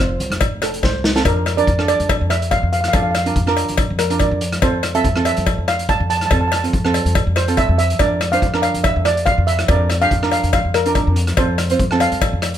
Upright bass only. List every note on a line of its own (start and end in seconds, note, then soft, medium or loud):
0.00 0.16 F1 medium
0.20 0.30 C2 medium
0.30 0.79 F1 medium
0.83 1.22 C2 medium
1.25 1.64 F2 medium
1.67 1.97 F2 medium
2.00 2.19 F2 medium
2.21 2.60 F2 medium
2.63 2.92 F2 medium
2.94 3.33 F2 medium
3.36 3.66 F2 medium
3.69 3.89 F2 medium
3.90 4.29 F2 medium
4.31 4.60 F2 medium
4.62 5.02 F2 medium
5.05 5.35 F2 medium
5.38 5.57 F2 medium
5.58 5.97 F2 medium
6.00 6.29 F2 medium
6.31 6.71 F2 medium
6.74 7.04 F2 medium
7.05 7.25 F2 medium
7.27 7.66 F2 medium
7.69 7.98 F2 medium
8.00 8.39 F2 medium
8.42 8.72 F2 medium
8.74 8.94 F2 medium
8.96 9.35 F2 medium
9.38 9.67 F2 medium
9.69 10.08 F2 medium
10.11 10.41 F2 medium
10.43 10.63 F2 medium
10.65 11.04 F2 medium
11.07 11.36 F2 medium
11.38 11.77 F2 medium
11.80 12.10 F2 medium
12.12 12.31 F2 medium
12.33 12.58 F2 medium